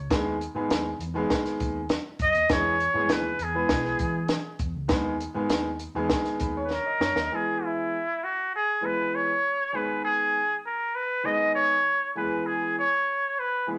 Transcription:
0.10 fingered electric bass D#2, grand piano D#3 G#3 B3 G#4, kick, snare, closed hi-hat
0.41 closed hi-hat
0.55 fingered electric bass G#2, grand piano D#3 G#3 B3 G#4
0.69 fingered electric bass D#2, snare, closed hi-hat
0.99 fingered electric bass E2, closed hi-hat
1.14 grand piano D#3 G#3 B3 G#4
1.30 kick, snare, closed hi-hat
1.45 muted fingered electric bass stroke, snare, closed hi-hat
1.60 fingered electric bass D#2, kick, closed hi-hat
1.89 snare, closed hi-hat
2.19 fingered electric bass F#2, trumpet D#5, kick, closed hi-hat
2.34 fingered electric bass D#2, closed hi-hat
2.49 fingered electric bass E2, grand piano E3 G#3 B3 G#4, trumpet C#5, kick, snare, closed hi-hat
2.80 closed hi-hat
2.94 fingered electric bass G#2, grand piano E3 G#3 B3 G#4
3.09 fingered electric bass D#2, trumpet B4, snare, closed hi-hat
3.39 fingered electric bass E2, closed hi-hat
3.43 trumpet G#4
3.54 grand piano E3 G#3 B3 B4
3.69 fingered electric bass B1, kick, snare, closed hi-hat
3.85 snare
3.99 fingered electric bass E3, kick, closed hi-hat
4.28 snare, closed hi-hat
4.59 fingered electric bass E2, kick, closed hi-hat
4.75 fingered electric bass C#2
4.88 fingered electric bass D#2, grand piano D#3 G#3 B3 G#4, kick, snare, closed hi-hat
5.20 closed hi-hat
5.34 fingered electric bass G#2, grand piano D#3 G#3 B3 G#4
5.49 fingered electric bass D#2, snare, closed hi-hat
5.79 closed hi-hat
5.95 fingered electric bass E2, grand piano D#3 G#3 B3 G#4
6.10 kick, snare, closed hi-hat
6.25 muted fingered electric bass stroke, snare, closed hi-hat
6.40 fingered electric bass D#2, grand piano B4, kick, closed hi-hat
6.57 grand piano C#5
6.65 trumpet B4
6.71 trumpet A#4, snare
6.86 grand piano D#5
7.00 fingered electric bass F#2, grand piano C#5, snare
7.15 fingered electric bass D#2, grand piano D#5, snare
7.32 grand piano E3 G#3 B3 G#4, trumpet G#4
7.64 trumpet E4
8.24 trumpet F#4
8.56 trumpet G#4
8.81 grand piano E3 G#3 B3 B4
8.86 trumpet B4
9.16 trumpet C#5
9.73 grand piano D#3 G#3 B3 G#4, trumpet B4
10.05 trumpet G#4
10.66 trumpet A#4
10.95 trumpet B4
11.24 grand piano D#3 G#3 B3 G#4, trumpet D#5
11.55 trumpet C#5
12.15 grand piano E3 G#3 B3 G#4, trumpet B4
12.47 trumpet G#4
12.79 trumpet C#5
13.39 trumpet B4
13.67 grand piano E3 G#3 B3 G#4

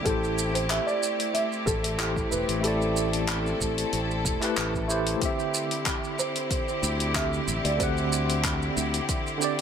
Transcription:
Already playing: string section E4 G4
0.02 fingered electric bass A1, tine electric piano A3 E4, string section A3 C4, grand piano A4, kick, open hi-hat, shaker
0.07 tine electric piano G4 C5
0.24 shaker
0.38 shaker
0.54 grand piano C5, open hi-hat, shaker
0.69 grand piano E5, clap, open hi-hat, shaker
0.86 grand piano D5, shaker
1.03 shaker
1.20 open hi-hat, shaker
1.34 grand piano E5, open hi-hat, shaker
1.52 shaker
1.66 fingered electric bass A1, grand piano A4, kick, shaker
1.84 open hi-hat, shaker
1.98 tine electric piano A3 E4 G4 C5, clap, open hi-hat, shaker
2.16 kick, shaker
2.31 fingered electric bass E1, grand piano B4, shaker
2.49 fingered electric bass A1, open hi-hat, shaker
2.60 tine electric piano A3 E4, grand piano A4, string section A4, open hi-hat
2.64 tine electric piano G4 D5, shaker
2.82 shaker
2.97 shaker
3.13 open hi-hat, shaker
3.28 clap, open hi-hat, shaker
3.46 shaker
3.60 fingered electric bass A1, kick, shaker
3.78 open hi-hat, shaker
3.93 fingered electric bass A1, open hi-hat, shaker
4.11 shaker
4.25 fingered electric bass E1, kick, shaker
4.40 tine electric piano A3 E4 G4 B4, clap, open hi-hat, shaker
4.57 fingered electric bass A1, clap, open hi-hat, shaker
4.74 kick, shaker
4.88 tine electric piano A3 E4 G4 C5, shaker
5.07 open hi-hat, shaker
5.18 tine electric piano D3 C4, string section D3 C4 E4 G4, kick, open hi-hat, shaker
5.23 tine electric piano G4 E5
5.39 shaker
5.54 shaker
5.71 open hi-hat, shaker
5.86 kick, clap, open hi-hat, shaker
6.04 shaker
6.19 grand piano C5, shaker
6.36 open hi-hat, shaker
6.51 kick, open hi-hat, shaker
6.68 shaker
6.83 fingered electric bass D2, shaker
7.00 open hi-hat, shaker
7.14 tine electric piano D3 C4 G4 E5, grand piano E5, kick, clap, open hi-hat, shaker
7.33 shaker
7.47 fingered electric bass A1, shaker
7.65 fingered electric bass D2, grand piano D5, open hi-hat, shaker
7.76 tine electric piano D3 C4, grand piano C5, kick, open hi-hat
7.80 tine electric piano G4 F#5, shaker
7.98 shaker
8.13 shaker
8.30 open hi-hat, shaker
8.44 kick, clap, open hi-hat, shaker
8.62 shaker
8.77 fingered electric bass D2, shaker
8.94 open hi-hat, shaker
9.09 kick, open hi-hat, shaker
9.27 shaker
9.38 tine electric piano D3 C4
9.42 tine electric piano G4 D5, shaker

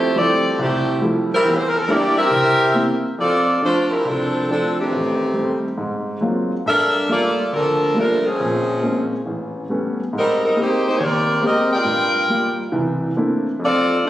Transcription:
Already playing: saxophone section A3 E4 G4 C5
0.16 grand piano F3 G3 A3 E4, saxophone section C4 G4 A4 D5
0.59 grand piano C2, saxophone section A3 E4 G4 C5
1.01 grand piano F3 G3 A3 E4
1.33 saxophone section G3 C4 E4 A#4
1.44 grand piano E2
1.54 saxophone section C5
1.66 saxophone section A#4
1.76 saxophone section A4
1.82 saxophone section A#4
1.88 grand piano G3 D4 E4, saxophone section A#3 E4 G4 D5
2.17 saxophone section C4 G4 A#4 E5
2.31 grand piano C2
2.74 grand piano A#3 C4 E4
3.18 grand piano F2, saxophone section C4 F4 A4 D5
3.62 grand piano F3 A3 D4, saxophone section A3 D4 F4 C5
3.90 saxophone section G3 C4 E4 A#4
4.05 grand piano C2, saxophone section F3 C4 D4 A4
4.49 grand piano F3 A3 D4, saxophone section F3 C4 D4 A4
4.79 saxophone section D#3 A3 C4 G4
4.91 grand piano A1
5.34 grand piano G3 A3 C4
5.78 grand piano G#2
6.21 grand piano F#3 G#3 A#3 C4 F4
6.66 grand piano G2, saxophone section D4 A4 A#4 E5
7.09 grand piano G3 A3 A#3 F4, saxophone section A#3 F4 A4 D5
7.53 grand piano D2, saxophone section F3 D4 A4 A#4
7.94 grand piano G3 A3 A#3 F4
7.98 saxophone section F3 A3 D4 A#4
8.25 saxophone section F3 C4 C#4 G#4
8.40 grand piano A#1 A#2
8.83 grand piano G#3 A#3 C4 C#4
9.26 grand piano A1
9.69 grand piano G3 A3 B3 C#4
10.13 grand piano G#2
10.17 saxophone section G3 C4 D#4 A#4
10.44 saxophone section G3 C4 D#4 A#4
10.56 grand piano G#3 A#3 C4 G4, saxophone section D#4 G4 C5
10.60 saxophone section A#3
10.87 saxophone section A#3 D#4 G4 C5
10.97 grand piano D#2, saxophone section C#5
11.02 saxophone section C4 G4 A#4 D5
11.42 grand piano G#3 A#3 C4 G4, saxophone section C4 G4 A#4 D#5
11.73 saxophone section F4 A#4 D5 G5
11.84 grand piano G2 G3
12.30 grand piano G3 A#3 F4
12.72 grand piano C2 E3
13.16 grand piano A3 A#3 C4 D4 E4
13.60 grand piano F2
13.64 saxophone section C4 F4 A4 D5
14.03 grand piano A3 D4 F4, saxophone section A3 D4 F4 C5

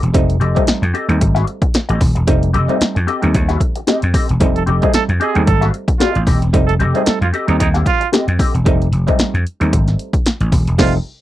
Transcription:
0.02 slap bass E1, muted clean electric guitar stroke, closed hi-hat
0.14 slap bass F1, clav G3 A3 C4 D#4, kick, closed hi-hat
0.30 closed hi-hat
0.40 slap bass F1, clean electric guitar C4 G4 A4 D#5, closed hi-hat
0.55 clav G3 A3 C4 D#4, kick, closed hi-hat
0.66 muted clean electric guitar stroke, muted slap bass stroke, snare, closed hi-hat
0.82 slap bass F2, muted clean electric guitar stroke, closed hi-hat
0.94 clean electric guitar C4 G4 A4 D#5, closed hi-hat
1.08 slap bass D#2, clav G3 A3 C4 D#4, muted clean electric guitar stroke, closed hi-hat
1.20 slap bass G#1, muted clean electric guitar stroke, kick, closed hi-hat
1.35 clean electric guitar C4 G4 A4 F5, snare, closed hi-hat
1.47 muted clean electric guitar stroke, closed hi-hat
1.62 muted clean electric guitar stroke, kick, closed hi-hat
1.74 muted clean electric guitar stroke, snare, closed hi-hat
1.89 slap bass A1, clean electric guitar C4 G4 A4 D#5, closed hi-hat
2.01 slap bass D#1, muted clean electric guitar stroke, kick, snare, open hi-hat
2.15 slap bass E1, muted clean electric guitar stroke, closed hi-hat
2.27 slap bass F1, clav G3 A3 C4 D#4, kick, closed hi-hat
2.43 closed hi-hat
2.53 slap bass F1, clean electric guitar C4 G4 A4 D#5, closed hi-hat
2.68 clav G3 A3 C4 D#4, closed hi-hat
2.80 muted clean electric guitar stroke, muted slap bass stroke, snare, closed hi-hat
2.95 slap bass F2, muted clean electric guitar stroke, closed hi-hat
3.07 clean electric guitar C4 G4 A4 D#5, closed hi-hat
3.22 slap bass D#2, clav G3 A3 C4 D#4, muted clean electric guitar stroke, closed hi-hat
3.34 slap bass D#2, muted clean electric guitar stroke, kick, closed hi-hat
3.49 clean electric guitar C4 G4 A4 F5, snare, closed hi-hat
3.60 muted clean electric guitar stroke, kick, closed hi-hat
3.76 muted clean electric guitar stroke, closed hi-hat
3.87 clean electric guitar C4 G4 A4 D#5, snare, closed hi-hat
4.02 slap bass F2, muted clean electric guitar stroke, closed hi-hat
4.13 clean electric guitar C4 G4 A4 D#5, kick, snare, open hi-hat
4.28 slap bass E1, muted clean electric guitar stroke, closed hi-hat
4.40 slap bass F1, clav G3 A3 C4 D#4, kick, closed hi-hat
4.56 trombone A4, closed hi-hat
4.66 slap bass F1, clean electric guitar C4 G4 A4 D#5, closed hi-hat
4.82 clav G3 A3 C4 D#4, trombone G#4, kick, closed hi-hat
4.93 trombone A4, muted clean electric guitar stroke, muted slap bass stroke, snare, closed hi-hat
5.09 slap bass F2, muted clean electric guitar stroke, closed hi-hat
5.20 clean electric guitar C4 G4 A4 D#5, trombone G#4, closed hi-hat
5.35 slap bass D#2, clav G3 A3 C4 D#4, muted clean electric guitar stroke, closed hi-hat
5.46 slap bass G#1, trombone A4, muted clean electric guitar stroke, kick, closed hi-hat
5.61 clean electric guitar C4 G4 A4 F5, snare, closed hi-hat
5.73 muted clean electric guitar stroke, closed hi-hat
5.88 muted clean electric guitar stroke, kick, closed hi-hat
5.99 clean electric guitar C4 G4 A4 D#5, trombone F4, snare, closed hi-hat
6.15 slap bass A1, muted clean electric guitar stroke, closed hi-hat
6.27 slap bass D#1, clean electric guitar C4 G4 A4 D#5, kick, snare, open hi-hat
6.42 slap bass E1, muted clean electric guitar stroke, closed hi-hat
6.53 slap bass F1, clav G3 A3 C4 D#4, kick, closed hi-hat
6.67 trombone A4, closed hi-hat
6.80 slap bass F1, clean electric guitar C4 G4 A4 D#5, closed hi-hat
6.94 clav G3 A3 C4 D#4, trombone G#4, closed hi-hat
7.06 trombone A4, muted clean electric guitar stroke, muted slap bass stroke, snare, closed hi-hat
7.21 slap bass F2, trombone F4, muted clean electric guitar stroke, closed hi-hat
7.33 clean electric guitar C4 G4 A4 D#5, closed hi-hat
7.47 slap bass D#2, clav G3 A3 C4 D#4, trombone D#4, muted clean electric guitar stroke, closed hi-hat
7.60 slap bass D#2, trombone D#4, muted clean electric guitar stroke, kick, closed hi-hat
7.74 clean electric guitar C4 G4 A4 F5, snare, closed hi-hat
7.86 trombone F4, muted clean electric guitar stroke, kick, closed hi-hat
8.01 muted clean electric guitar stroke, closed hi-hat
8.12 clean electric guitar C4 G4 A4 D#5, snare, closed hi-hat
8.28 slap bass F2, muted clean electric guitar stroke, closed hi-hat
8.39 clean electric guitar C4 G4 A4 D#5, kick, snare, open hi-hat
8.54 slap bass E1, muted clean electric guitar stroke, closed hi-hat
8.65 slap bass F1, clav G3 A3 C4 D#4, kick, closed hi-hat
8.82 closed hi-hat
8.92 slap bass F1, closed hi-hat
9.07 clav G3 A3 C4 D#4, kick, closed hi-hat
9.19 muted slap bass stroke, snare, closed hi-hat
9.34 slap bass F2, closed hi-hat
9.47 closed hi-hat
9.60 slap bass D#2, clav G3 A3 C4 D#4, closed hi-hat
9.73 slap bass G#1, kick, closed hi-hat
9.88 snare, closed hi-hat
9.99 closed hi-hat
10.13 kick, closed hi-hat
10.26 snare, closed hi-hat
10.41 slap bass A1, closed hi-hat
10.52 slap bass D#1, kick, snare, open hi-hat
10.67 slap bass E1, closed hi-hat
10.78 slap bass F1, clav G3 A3 C4 D#4, trombone F4, kick, snare, crash

